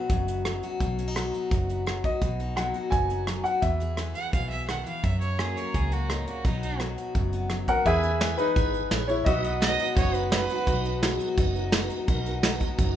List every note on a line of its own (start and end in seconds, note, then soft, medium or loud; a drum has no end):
0.00 0.45 F#3 medium
0.00 0.28 B3 medium
0.00 0.98 D#4 medium
0.00 0.63 F#4 medium
0.09 0.60 F#1 medium
0.09 0.81 F#2 medium
0.09 kick loud
0.09 closed hi-hat medium
0.28 1.02 B3 medium
0.28 closed hi-hat medium
0.45 1.15 F#3 medium
0.45 cross-stick loud
0.45 closed hi-hat medium
0.63 1.34 F#4 medium
0.63 closed hi-hat medium
0.80 1.31 B1 medium
0.80 1.51 B2 medium
0.80 kick medium
0.80 closed hi-hat medium
0.99 1.08 C#4 medium
0.99 closed hi-hat medium
1.08 2.22 D#4 soft
1.16 1.85 F#3 medium
1.16 1.70 B3 medium
1.16 cross-stick medium
1.16 closed hi-hat medium
1.34 2.04 F#4 medium
1.34 closed hi-hat medium
1.51 2.01 F#1 medium
1.51 2.22 F#2 medium
1.51 kick loud
1.51 closed hi-hat medium
1.69 2.57 B3 medium
1.69 closed hi-hat medium
1.86 2.20 F#3 medium
1.86 cross-stick loud
1.86 closed hi-hat medium
2.04 2.74 F#4 medium
2.04 2.37 D#5 medium
2.04 kick medium
2.04 closed hi-hat medium
2.21 2.72 B1 loud
2.21 2.92 B2 medium
2.21 kick medium
2.21 closed hi-hat medium
2.40 3.61 D#4 medium
2.40 closed hi-hat medium
2.56 3.27 F#3 medium
2.56 3.10 B3 medium
2.56 2.89 F#5 medium
2.56 cross-stick medium
2.56 closed hi-hat medium
2.74 3.45 F#4 medium
2.74 closed hi-hat soft
2.90 3.42 F#1 medium
2.90 3.63 F#2 medium
2.90 3.46 G#5 medium
2.90 kick loud
2.90 closed hi-hat medium
3.10 3.61 B3 medium
3.10 closed hi-hat medium
3.27 3.61 F#3 medium
3.27 cross-stick loud
3.27 closed hi-hat medium
3.44 3.63 F#4 medium
3.44 3.61 F#5 medium
3.44 closed hi-hat medium
3.62 4.13 E2 medium
3.62 4.85 E3 medium
3.62 4.12 E5 medium
3.62 kick medium
3.62 closed hi-hat medium
3.80 4.16 G#4 medium
3.80 closed hi-hat medium
3.97 5.02 B3 medium
3.97 4.51 E4 medium
3.97 cross-stick medium
3.97 closed hi-hat medium
4.15 5.02 G#4 medium
4.15 4.32 F#5 medium
4.15 closed hi-hat medium
4.33 4.83 B1 medium
4.33 4.69 B2 medium
4.33 4.49 F5 medium
4.33 kick loud
4.33 closed hi-hat medium
4.50 5.02 E4 medium
4.50 4.67 E5 medium
4.50 closed hi-hat medium
4.68 4.87 D#3 medium
4.68 4.85 F#5 medium
4.68 cross-stick loud
4.68 closed hi-hat medium
4.86 5.04 E3 medium
4.86 5.05 F5 medium
4.86 closed hi-hat medium
5.03 5.54 F#2 medium
5.03 6.10 F#2 medium
5.03 5.20 E5 medium
5.03 kick medium
5.03 closed hi-hat medium
5.21 6.45 C#4 soft
5.21 5.41 C#5 medium
5.21 closed hi-hat medium
5.39 6.43 F#3 medium
5.39 5.92 A#3 medium
5.39 5.57 G#4 medium
5.39 cross-stick loud
5.39 closed hi-hat medium
5.56 6.43 A#4 medium
5.56 5.77 C#5 medium
5.56 closed hi-hat medium
5.74 6.25 C#2 medium
5.74 6.43 C#3 medium
5.74 5.94 G#4 medium
5.74 kick medium
5.74 closed hi-hat medium
5.92 6.43 A#3 soft
5.92 6.12 F#4 medium
5.92 closed hi-hat medium
6.10 6.27 G#2 medium
6.10 6.27 D#4 medium
6.10 cross-stick loud
6.10 closed hi-hat medium
6.27 6.45 A#2 medium
6.27 6.47 F#4 medium
6.27 closed hi-hat medium
6.45 6.95 B1 medium
6.45 7.86 B2 medium
6.45 6.79 F#3 medium
6.45 6.80 B3 medium
6.45 6.61 D#4 medium
6.45 6.62 D#4 medium
6.45 6.97 F#4 medium
6.45 kick loud
6.45 closed hi-hat medium
6.62 6.79 D#4 medium
6.62 7.84 D#4 medium
6.62 closed hi-hat medium
6.80 7.49 F#3 medium
6.80 7.33 B3 soft
6.80 cross-stick medium
6.80 closed hi-hat medium
6.98 7.67 F#4 medium
6.98 closed hi-hat medium
7.15 7.65 F#1 medium
7.15 7.86 F#2 medium
7.15 kick loud
7.15 closed hi-hat medium
7.33 7.84 B3 medium
7.33 closed hi-hat medium
7.50 7.84 F#3 medium
7.50 cross-stick medium
7.50 closed hi-hat medium
7.68 7.86 F#4 medium
7.68 7.85 A#4 medium
7.68 7.85 F#5 loud
7.68 kick medium
7.68 closed hi-hat medium
7.85 8.36 E2 medium
7.85 9.27 E3 medium
7.85 8.12 E4 medium
7.85 8.12 G#4 medium
7.85 8.38 G#4 medium
7.85 8.35 G#4 medium
7.85 8.12 B4 medium
7.85 9.25 B4 medium
7.85 8.40 E5 loud
7.85 9.26 G#5 medium
7.85 kick medium
7.85 closed hi-hat medium
8.03 8.12 C#4 soft
8.03 closed hi-hat medium
8.20 8.91 B3 medium
8.20 8.47 E4 medium
8.20 8.47 G#4 medium
8.20 8.48 B4 medium
8.20 snare loud
8.20 closed hi-hat medium
8.38 9.05 D#4 medium
8.38 8.56 G#4 medium
8.38 9.11 B4 medium
8.38 closed hi-hat medium
8.56 8.86 G#1 medium
8.56 8.83 E4 medium
8.56 8.83 G#4 medium
8.56 9.08 G#4 medium
8.56 8.83 B4 medium
8.56 kick loud
8.56 closed hi-hat medium
8.74 closed hi-hat medium
8.91 9.21 A#1 medium
8.91 9.44 B3 medium
8.91 9.18 E4 medium
8.91 9.18 G#4 medium
8.91 9.18 C#5 medium
8.91 snare loud
8.91 closed hi-hat medium
9.07 9.26 E4 medium
9.07 9.25 G#4 medium
9.07 9.25 C#5 medium
9.07 closed hi-hat medium
9.25 9.77 B1 loud
9.25 9.97 B2 medium
9.25 12.96 B3 medium
9.25 9.97 D#4 medium
9.25 9.54 D#4 medium
9.25 9.59 F#4 medium
9.25 9.54 F#4 medium
9.25 9.54 B4 medium
9.25 9.58 D#5 medium
9.25 9.47 E5 medium
9.25 kick loud
9.25 closed hi-hat medium
9.44 10.85 B3 medium
9.44 12.96 D#5 medium
9.44 closed hi-hat medium
9.62 10.32 F#3 medium
9.62 9.88 D#4 medium
9.62 9.89 F#4 medium
9.62 9.89 B4 medium
9.62 9.96 D#5 loud
9.62 snare loud
9.62 closed hi-hat medium
9.79 10.51 F#4 medium
9.79 closed hi-hat medium
9.96 10.47 F#1 medium
9.96 10.67 F#2 medium
9.96 10.23 D#4 medium
9.96 10.68 D#4 medium
9.96 10.24 F#4 medium
9.96 10.24 B4 loud
9.96 10.16 C#5 medium
9.96 kick loud
9.96 closed hi-hat medium
10.14 10.31 B4 medium
10.14 closed hi-hat medium
10.32 11.03 F#3 medium
10.32 10.59 D#4 medium
10.32 10.59 F#4 medium
10.32 11.00 B4 medium
10.32 10.59 B4 medium
10.32 snare loud
10.32 closed hi-hat medium
10.49 11.21 F#4 medium
10.49 closed hi-hat medium
10.67 11.17 B1 medium
10.67 11.38 B2 medium
10.67 10.94 D#4 loud
10.67 11.38 D#4 medium
10.67 10.94 F#4 medium
10.67 10.94 B4 loud
10.67 kick loud
10.67 closed hi-hat medium
10.85 12.26 B3 medium
10.85 closed hi-hat medium
11.02 11.73 F#3 medium
11.02 11.29 D#4 medium
11.02 11.29 F#4 medium
11.02 11.29 G#4 medium
11.02 snare loud
11.02 closed hi-hat medium
11.20 11.91 F#4 medium
11.20 closed hi-hat medium
11.37 11.88 F#1 medium
11.37 12.08 F#2 medium
11.37 11.64 D#4 medium
11.37 12.09 D#4 medium
11.37 11.64 F#4 medium
11.37 11.64 B4 loud
11.37 kick loud
11.37 closed hi-hat medium
11.56 closed hi-hat medium
11.72 12.44 F#3 medium
11.72 11.99 D#4 medium
11.72 11.99 F#4 medium
11.72 11.99 B4 loud
11.72 snare loud
11.72 closed hi-hat medium
11.90 12.62 F#4 medium
11.90 closed hi-hat medium
12.08 12.58 B1 medium
12.08 12.79 B2 medium
12.08 12.35 D#4 medium
12.08 12.80 D#4 medium
12.08 12.35 F#4 medium
12.08 12.35 A#4 loud
12.08 kick loud
12.08 closed hi-hat medium
12.26 12.96 B3 medium
12.26 closed hi-hat medium
12.43 12.96 F#3 medium
12.43 12.70 D#4 medium
12.43 12.70 F#4 medium
12.43 12.70 B4 medium
12.43 snare loud
12.43 closed hi-hat medium
12.61 12.96 F#4 medium
12.61 kick medium
12.61 closed hi-hat medium
12.78 12.96 F#1 medium
12.78 12.96 F#2 medium
12.78 12.96 D#4 medium
12.78 12.96 F#4 medium
12.78 12.96 B4 loud
12.78 kick loud
12.78 closed hi-hat medium